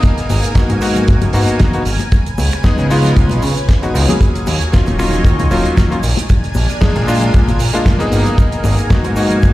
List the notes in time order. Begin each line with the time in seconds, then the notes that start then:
Already playing: A#3 B3 D#4 G#4 A#4 G#5
0.03 kick, closed hi-hat, cabasa, shaker
0.18 closed hi-hat, shaker
0.29 G#1, open hi-hat, high conga, cabasa, shaker
0.43 closed hi-hat, cabasa, shaker
0.55 A#3 B3 D#4 F#4, kick, snare, closed hi-hat, shaker
0.69 G#2, closed hi-hat, high bongo, high conga, shaker
0.81 A#3 B3 D#4 F#4, finger snap, open hi-hat, cabasa, shaker
0.96 closed hi-hat, low conga, cabasa, shaker
1.08 G#1, kick, closed hi-hat, cabasa, shaker
1.21 F#1, closed hi-hat, high conga, low conga, shaker
1.33 G#2 A#3 B3 D#4 F#4, open hi-hat, cabasa, shaker
1.47 closed hi-hat, cabasa, shaker
1.59 kick, snare, closed hi-hat, high conga, cabasa, shaker
1.73 A#3 B3 D#4 F#4, closed hi-hat, shaker
1.85 G#1, open hi-hat, cabasa, shaker
2.00 closed hi-hat, high bongo, high conga, cabasa, shaker
2.12 C#4 B4, kick, closed hi-hat, cabasa, shaker
2.26 closed hi-hat, shaker
2.38 C#2, open hi-hat, high conga, cabasa, shaker
2.51 finger snap, closed hi-hat, cabasa, shaker
2.63 G#3 B3 D#4 G#4, kick, snare, closed hi-hat, shaker
2.78 C#3, closed hi-hat, high bongo, high conga, shaker
2.90 G#3 B3 D#4 F4, open hi-hat, cabasa, shaker
3.04 closed hi-hat, low conga, cabasa, shaker
3.16 C#2, kick, closed hi-hat, shaker
3.29 B1, closed hi-hat, high conga, shaker
3.42 C#3, open hi-hat, cabasa, shaker
3.57 closed hi-hat, cabasa, shaker
3.68 kick, snare, closed hi-hat, high conga, cabasa, shaker
3.82 G#3 B3 D#4 F#4, closed hi-hat, high bongo, shaker
3.94 C#2 G#3 B3 D#4 F4, open hi-hat, cabasa, shaker
4.08 F#3 A#3 C#4 G#4, closed hi-hat, high conga, low conga, cabasa, shaker
4.21 D#4 C#5, kick, closed hi-hat, cabasa, shaker
4.35 closed hi-hat, shaker
4.46 D#2, open hi-hat, high conga, cabasa, shaker
4.61 closed hi-hat, cabasa, shaker
4.72 F#3 A#3 C#4 F4, kick, snare, closed hi-hat, shaker
4.86 D#1, closed hi-hat, high bongo, high conga, shaker
4.98 F#3 A#3 C#4 F4, finger snap, open hi-hat, cabasa, shaker
5.13 closed hi-hat, low conga, cabasa, shaker
5.25 D#2, kick, closed hi-hat, cabasa, shaker
5.39 C#2, closed hi-hat, high conga, low conga, shaker
5.50 D#1 F#3 A#3 C#4 F4, open hi-hat, cabasa, shaker
5.65 closed hi-hat, cabasa, shaker
5.77 kick, snare, closed hi-hat, high conga, shaker
5.91 F#3 A#3 C#4 F4, closed hi-hat, shaker
6.03 A#1 D4 A#4 G#5, open hi-hat, cabasa, shaker
6.16 closed hi-hat, high bongo, high conga, cabasa, shaker
6.29 kick, closed hi-hat, cabasa, shaker
6.44 closed hi-hat, shaker
6.54 A#1, open hi-hat, high conga, cabasa, shaker
6.69 closed hi-hat, cabasa, shaker
6.81 G#3 A#3 D4 G#4, kick, snare, closed hi-hat, shaker
6.96 A#2, closed hi-hat, high bongo, high conga, shaker
7.07 G#3 A#3 D4 F4, open hi-hat, cabasa, shaker
7.21 closed hi-hat, low conga, cabasa, shaker
7.34 A#1, kick, closed hi-hat, shaker
7.48 G#1, closed hi-hat, high conga, shaker
7.59 A#2, open hi-hat, cabasa, shaker
7.74 G#3 A#3 D4 F4, closed hi-hat, cabasa, shaker
7.86 kick, snare, closed hi-hat, high conga, cabasa, shaker
7.99 A#3 B3 D#4 G#4, closed hi-hat, high bongo, shaker
8.12 G#1 G#5, open hi-hat, cabasa, shaker
8.25 closed hi-hat, high conga, low conga, cabasa, shaker
8.38 kick, closed hi-hat, cabasa, shaker
8.52 closed hi-hat, shaker
8.64 G#1, open hi-hat, high conga, cabasa, shaker
8.78 closed hi-hat, cabasa, shaker
8.90 A#3 B3 D#4 F#4, kick, snare, closed hi-hat, shaker
9.04 G#2, closed hi-hat, high bongo, high conga, shaker
9.16 A#3 B3 D#4 F#4, open hi-hat, cabasa, shaker
9.30 closed hi-hat, low conga, cabasa, shaker
9.42 G#1, kick, closed hi-hat, cabasa, shaker